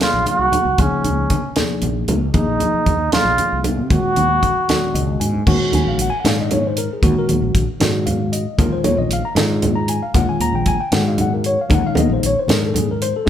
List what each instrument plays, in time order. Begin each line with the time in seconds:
0.00 tine electric piano C3 F#3 A#3 D#4 G#4, muted trumpet F4, snare, closed hi-hat, low conga
0.14 fretless electric bass A#1
0.26 muted trumpet F#4, muted fretless electric bass stroke, closed hi-hat, high conga
0.39 fretless electric bass C2
0.52 closed hi-hat, low conga
0.65 fretless electric bass C2, low conga
0.78 fretless electric bass C#2, tine electric piano C#3 F3 A#3 D#4 G#4, muted trumpet C#4, kick, closed hi-hat, high conga
1.04 fretless electric bass C#2, closed hi-hat, low conga
1.30 kick, closed hi-hat, high conga
1.56 tine electric piano C3 F3 A#3 D#4 G#4, snare, closed hi-hat, low conga
1.82 fretless electric bass A#1, closed hi-hat, high conga
2.08 fretless electric bass C#2, closed hi-hat, low conga
2.21 low conga
2.33 fretless electric bass D#2, tine electric piano C3 F3 A#3 D#4 G#4, muted trumpet D#4, kick, closed hi-hat, high conga
2.46 fretless electric bass A#1
2.60 closed hi-hat, low conga
2.73 muted fretless electric bass stroke
2.86 fretless electric bass D#2, kick, closed hi-hat, high conga
3.12 tine electric piano C3 F3 A#3 D#4 G#4, muted trumpet F4, snare, closed hi-hat, low conga
3.25 fretless electric bass A#1
3.38 muted fretless electric bass stroke, closed hi-hat, high conga
3.53 fretless electric bass C2
3.64 closed hi-hat, low conga
3.78 fretless electric bass C3, low conga
3.90 fretless electric bass D#2, tine electric piano A#2 D#3 G#3 C#4 F#4, muted trumpet F#4, kick, closed hi-hat, high conga, low conga
4.04 muted fretless electric bass stroke
4.16 fretless electric bass D#2, closed hi-hat, low conga
4.43 kick, closed hi-hat, high conga
4.68 tine electric piano A#2 D#3 G#3 C#4 F#4, snare, closed hi-hat, low conga
4.82 low conga
4.94 fretless electric bass C#2, tine electric piano D#5, closed hi-hat, high conga, low conga
5.08 high conga
5.20 fretless electric bass G#2, tine electric piano G#5, closed hi-hat, low conga
5.34 low conga
5.47 fretless electric bass D#2, tine electric piano A#2 D#3 G#3 C#4 F#4, kick, crash, high conga
5.60 low conga
5.72 fretless electric bass D#2, tine electric piano G#5, closed hi-hat, low conga
5.86 fretless electric bass A#1, tine electric piano F5
5.98 fretless electric bass A#1, tine electric piano F#5, closed hi-hat
6.10 tine electric piano G#5, muted fretless electric bass stroke
6.20 tine electric piano F#5
6.24 fretless electric bass G#2, tine electric piano A#2 D#3 G#3 C#4 D#4 F5, snare, closed hi-hat, high conga
6.38 tine electric piano D#5, low conga
6.51 tine electric piano C#5, closed hi-hat, low conga
6.64 tine electric piano C5, low conga
6.77 tine electric piano A#4, closed hi-hat
6.93 tine electric piano G#4
7.02 fretless electric bass D#2, tine electric piano A#2 D#3 G#3 C#4 F#4, kick, closed hi-hat, high conga
7.16 tine electric piano A#4, low conga
7.29 fretless electric bass D#2, closed hi-hat, low conga
7.42 fretless electric bass A#1
7.55 fretless electric bass A#1, kick, closed hi-hat
7.68 muted fretless electric bass stroke
7.80 fretless electric bass G#2, tine electric piano A#2 D#3 G#3 C#4 F#4, snare, closed hi-hat, high conga
7.94 low conga
8.06 tine electric piano F5, closed hi-hat, low conga
8.20 low conga
8.32 tine electric piano D#5, closed hi-hat
8.57 fretless electric bass D#2, tine electric piano A#2 D#3 G#3 C#4 F4 A#4, kick, closed hi-hat, high conga
8.71 tine electric piano C5, low conga
8.84 fretless electric bass D#2, tine electric piano C#5, closed hi-hat, low conga
8.97 fretless electric bass A#1, tine electric piano D#5
9.09 fretless electric bass A#1, tine electric piano F5, closed hi-hat
9.22 tine electric piano A#5, muted fretless electric bass stroke
9.35 fretless electric bass G#2, tine electric piano A#2 D#3 G#3 C#4 F4, snare, closed hi-hat, high conga
9.49 low conga
9.62 closed hi-hat, low conga
9.76 tine electric piano A#5, low conga
9.88 tine electric piano G#5, closed hi-hat
10.03 tine electric piano F5
10.14 fretless electric bass D#2, tine electric piano A#2 D#3 G#3 C#4 F4 F#5, kick, closed hi-hat, high conga
10.27 tine electric piano G#5, low conga
10.40 fretless electric bass D#2, tine electric piano A#5, closed hi-hat
10.53 fretless electric bass A#1, tine electric piano G5
10.66 fretless electric bass A#1, tine electric piano G#5, kick, closed hi-hat
10.79 tine electric piano G5, muted fretless electric bass stroke
10.92 fretless electric bass G#2, tine electric piano A#2 D#3 G#3 C#4 F#4 F#5, snare, closed hi-hat, high conga
11.08 tine electric piano F5
11.18 tine electric piano F#5, closed hi-hat, low conga
11.34 tine electric piano A#4
11.44 tine electric piano C#5, closed hi-hat
11.57 tine electric piano F5, low conga
11.69 fretless electric bass D#2, tine electric piano A#2 D#3 G#3 C#4 D#4, kick, closed hi-hat, high conga
11.75 tine electric piano F#5
11.83 tine electric piano F5, low conga
11.95 fretless electric bass D#2, tine electric piano D#5, closed hi-hat, low conga
12.10 fretless electric bass A#1, tine electric piano C5
12.23 fretless electric bass A#1, tine electric piano C#5, closed hi-hat
12.36 tine electric piano C5, muted fretless electric bass stroke
12.47 fretless electric bass G#2, tine electric piano A#2 D#3 G#3 C#4 G#4, snare, closed hi-hat, high conga
12.52 tine electric piano A#4
12.61 low conga
12.66 tine electric piano A4
12.74 tine electric piano G#4, closed hi-hat, low conga
12.88 tine electric piano A#4, low conga
13.02 tine electric piano C5, closed hi-hat
13.16 tine electric piano A4
13.25 tine electric piano A#2 D#3 G#3 C#4 G#4